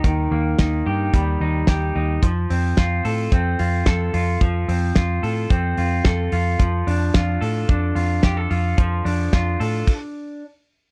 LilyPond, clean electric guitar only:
\new Staff \with { instrumentName = "Clean electric guitar" } { \time 4/4 \key f \mixolydian \tempo 4 = 110 <ees g bes ees' g'>8 bes8 ees'8 g'8 g8 ees'8 g'8 ees'8 | f8 c'8 f'8 a'8 c'8 f'8 a'8 f'8 | f8 c'8 f'8 a'8 c'8 f'8 a'8 f'8 | f8 d'8 f'8 a'8 d'8 f'8 g'16 a'16 f'8 |
f8 d'8 f'8 a'8 r2 | }